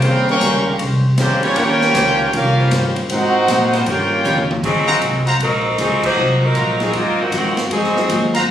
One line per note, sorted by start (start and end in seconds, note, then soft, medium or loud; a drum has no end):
0.00 0.40 D#2 medium
0.00 0.28 C#3 loud
0.00 0.29 D#3 soft
0.00 0.38 G3 loud
0.00 0.28 G3 loud
0.00 0.28 C4 loud
0.00 0.38 C#4 medium
0.00 0.29 C#4 medium
0.00 0.38 F4 loud
0.00 0.38 C5 loud
0.00 ride medium
0.05 0.30 G4 medium
0.05 0.30 A#4 loud
0.05 0.31 C5 medium
0.05 0.29 F5 loud
0.05 0.29 G5 medium
0.05 0.29 C6 loud
0.27 0.64 G3 loud
0.27 0.64 A#3 loud
0.27 0.64 C#4 loud
0.27 0.65 A#4 loud
0.27 0.65 F5 loud
0.27 0.65 G5 loud
0.27 0.65 C#6 loud
0.27 snare soft
0.41 0.79 C#2 loud
0.41 0.67 D#3 medium
0.41 0.68 C#4 medium
0.41 0.68 G4 medium
0.41 0.69 C5 medium
0.41 snare medium
0.41 hi-hat pedal medium
0.41 ride medium
0.68 0.80 C#3 medium
0.68 0.79 G3 medium
0.68 0.79 A#3 medium
0.68 0.80 G4 medium
0.68 0.80 C#5 medium
0.68 0.80 F5 medium
0.68 0.79 A#5 medium
0.79 1.17 C2 medium
0.79 1.06 D#3 soft
0.79 1.06 C#4 medium
0.79 1.07 G4 medium
0.79 1.07 C5 medium
0.79 ride medium
1.18 1.55 F2 loud
1.18 1.41 C#3 medium
1.18 1.44 D#3 medium
1.18 1.41 G3 medium
1.18 1.42 A#3 medium
1.18 1.41 C4 medium
1.18 1.45 C#4 medium
1.18 1.42 F4 medium
1.18 1.45 G4 medium
1.18 1.42 G4 medium
1.18 1.42 C5 loud
1.18 1.46 C5 medium
1.18 snare medium
1.18 hi-hat pedal medium
1.18 ride medium
1.42 1.56 G3 medium
1.42 1.92 G3 loud
1.42 1.56 A#3 medium
1.42 1.58 A#3 medium
1.42 1.56 C#4 medium
1.42 1.92 C#4 loud
1.42 1.92 F4 loud
1.42 1.58 F4 medium
1.42 1.58 G4 medium
1.42 1.92 C#5 loud
1.42 1.58 C#5 medium
1.42 ride medium
1.56 1.94 D#2 medium
1.56 1.83 D#3 medium
1.56 2.33 A#3 loud
1.56 2.33 C#4 loud
1.56 1.83 C#4 medium
1.56 2.34 F4 loud
1.56 2.34 G4 loud
1.56 1.84 G4 medium
1.56 2.34 A#4 loud
1.56 1.84 C5 medium
1.56 2.34 C#5 loud
1.56 2.34 G5 loud
1.56 ride medium
1.81 snare medium
1.95 2.32 C#2 loud
1.95 2.21 D#3 medium
1.95 2.12 G3 medium
1.95 2.12 C#4 medium
1.95 2.22 C#4 medium
1.95 2.12 F4 medium
1.95 2.22 G4 medium
1.95 2.12 C5 medium
1.95 2.22 C5 medium
1.95 snare medium
1.95 hi-hat pedal medium
1.95 ride medium
2.33 2.70 C2 medium
2.33 2.59 D#3 medium
2.33 2.93 A#3 medium
2.33 2.60 C#4 medium
2.33 2.93 C#4 medium
2.33 2.94 C#4 medium
2.33 2.93 F4 medium
2.33 2.60 G4 medium
2.33 2.94 G4 medium
2.33 2.94 A#4 medium
2.33 2.61 C5 medium
2.33 2.94 F5 loud
2.33 ride medium
2.58 3.07 G3 medium
2.58 3.07 C#4 medium
2.58 3.07 F4 medium
2.58 3.07 C5 loud
2.71 3.08 G2 loud
2.71 2.97 D#3 medium
2.71 2.98 C#4 medium
2.71 2.98 G4 medium
2.71 2.99 C5 medium
2.71 snare medium
2.71 hi-hat pedal medium
2.71 ride medium
2.96 ride medium
3.09 3.47 G#2 medium
3.09 3.36 G#2 medium
3.09 3.37 F#3 medium
3.09 3.83 C4 loud
3.09 3.37 C4 medium
3.09 3.83 D#4 loud
3.09 3.84 D#4 loud
3.09 3.83 F#4 medium
3.09 3.84 A#4 loud
3.09 3.84 C5 loud
3.09 3.84 F#5 loud
3.09 ride medium
3.13 3.38 F4 medium
3.48 3.75 G#2 medium
3.48 3.85 A#2 loud
3.48 3.75 F#3 medium
3.48 3.75 C4 medium
3.48 3.76 F4 medium
3.48 snare medium
3.48 hi-hat pedal medium
3.48 ride medium
3.73 3.82 G3 medium
3.73 3.82 C#4 medium
3.73 3.82 F4 medium
3.73 3.82 C5 loud
3.73 snare soft
3.73 ride medium
3.86 4.24 G2 medium
3.86 4.13 D#3 medium
3.86 4.51 A#3 medium
3.86 4.50 C#4 medium
3.86 4.14 C#4 medium
3.86 4.51 F4 medium
3.86 4.50 G4 medium
3.86 4.14 G4 medium
3.86 4.51 A#4 medium
3.86 4.14 C5 medium
3.86 4.51 C#5 medium
3.86 4.51 G5 loud
3.86 ride medium
4.24 4.62 F2 loud
4.24 4.51 D#3 medium
4.24 4.41 G3 medium
4.24 4.41 C#4 medium
4.24 4.52 C#4 medium
4.24 4.41 F4 medium
4.24 4.52 G4 medium
4.24 4.41 C#5 loud
4.24 hi-hat pedal medium
4.28 4.53 C5 medium
4.38 mid tom medium
4.51 mid tom loud
4.63 5.01 G#1 medium
4.63 4.89 G#2 soft
4.63 5.23 F#3 medium
4.63 4.90 F#3 soft
4.63 5.23 C4 medium
4.63 4.91 C4 soft
4.63 5.23 D#4 medium
4.63 4.91 F4 soft
4.63 5.24 G#4 medium
4.63 kick medium
4.63 crash medium
4.88 5.00 F#3 medium
4.88 5.01 A#3 medium
4.88 5.01 C4 medium
4.88 5.01 D#4 medium
4.88 5.01 F4 medium
4.88 4.97 F#4 medium
4.88 4.97 C5 medium
4.88 4.97 F5 medium
4.88 4.97 A#5 loud
4.88 kick soft
5.01 5.39 C2 medium
5.01 5.28 G#2 medium
5.01 5.29 F#3 medium
5.01 5.29 C4 medium
5.01 5.30 F4 medium
5.01 hi-hat pedal medium
5.01 ride medium
5.27 5.36 F#4 medium
5.27 5.36 C5 medium
5.27 5.36 F5 medium
5.27 5.36 A#5 loud
5.27 ride soft
5.40 5.77 A#1 medium
5.40 5.67 G#2 soft
5.40 5.67 F#3 soft
5.40 5.77 F#3 medium
5.40 5.77 C4 medium
5.40 5.68 C4 medium
5.40 5.77 D#4 medium
5.40 5.68 F4 soft
5.40 5.77 A#4 loud
5.40 ride medium
5.78 6.16 C#2 medium
5.78 6.05 G#2 medium
5.78 6.06 F#3 medium
5.78 6.04 F#3 medium
5.78 6.04 C4 medium
5.78 6.06 C4 medium
5.78 6.05 D#4 medium
5.78 6.06 F4 medium
5.78 6.05 G#4 medium
5.78 hi-hat pedal soft
5.78 ride medium
6.03 6.41 A#3 medium
6.03 6.41 D#4 medium
6.03 6.41 F#4 medium
6.03 6.41 C5 loud
6.03 kick medium
6.03 crash medium
6.16 6.54 C2 medium
6.16 6.43 G#2 soft
6.16 6.76 F#3 medium
6.16 6.44 F#3 soft
6.16 6.76 A#3 soft
6.16 6.76 C4 medium
6.16 6.44 C4 medium
6.16 6.76 D#4 medium
6.16 6.76 F4 medium
6.16 6.45 F4 medium
6.44 6.82 F#3 medium
6.44 6.81 C4 medium
6.44 6.81 D#4 medium
6.44 6.82 A#4 loud
6.55 6.93 A#1 medium
6.55 6.82 G#2 medium
6.55 6.82 F#3 medium
6.55 6.82 C4 medium
6.55 6.83 F4 medium
6.55 7.14 F#4 medium
6.55 7.14 C5 medium
6.55 7.14 F5 medium
6.55 7.14 A#5 medium
6.55 hi-hat pedal medium
6.55 ride medium
6.80 6.93 F#3 medium
6.80 6.94 F#3 medium
6.80 6.93 A#3 medium
6.80 6.93 C4 medium
6.80 6.94 C4 medium
6.80 6.93 D#4 medium
6.80 6.94 D#4 medium
6.80 6.93 F4 medium
6.80 6.94 G#4 medium
6.80 snare soft
6.80 ride soft
6.93 7.17 F2 medium
6.93 7.20 G#2 soft
6.93 7.21 F#3 medium
6.93 7.19 A#3 medium
6.93 7.21 C4 soft
6.93 7.19 C4 medium
6.93 7.21 D#4 medium
6.93 7.21 F4 loud
6.93 7.22 F4 medium
6.93 ride medium
7.18 7.33 D#3 medium
7.18 7.33 A#3 medium
7.18 7.33 C4 medium
7.18 7.34 F#4 medium
7.18 muted upright bass stroke soft
7.32 7.70 F#2 medium
7.32 7.59 G#2 medium
7.32 7.63 D#3 medium
7.32 7.59 F#3 medium
7.32 7.63 A#3 medium
7.32 7.60 C4 medium
7.32 7.63 C4 medium
7.32 7.60 F4 medium
7.32 7.64 F#4 medium
7.32 hi-hat pedal medium
7.32 ride medium
7.57 snare medium
7.57 ride soft
7.70 8.08 G#2 medium
7.70 7.98 G#2 medium
7.70 7.98 F#3 soft
7.70 8.32 F#3 medium
7.70 8.32 C4 medium
7.70 7.99 C4 medium
7.70 8.32 D#4 medium
7.70 8.32 G#4 medium
7.70 ride medium
7.75 7.99 F4 medium
7.84 snare soft
7.96 8.45 F#3 medium
7.96 8.46 A#3 medium
7.96 8.46 C4 medium
7.96 8.46 D#4 medium
7.96 8.46 F4 medium
7.96 snare soft
8.09 8.47 D#2 medium
8.09 8.36 G#2 medium
8.09 8.37 F#3 medium
8.09 8.37 C4 medium
8.09 8.37 F4 medium
8.09 hi-hat pedal medium
8.09 ride medium
8.34 8.44 F#4 medium
8.34 8.44 C5 medium
8.34 8.44 F5 medium
8.34 8.44 A#5 loud
8.34 snare soft
8.34 ride medium
8.47 8.51 G#2 soft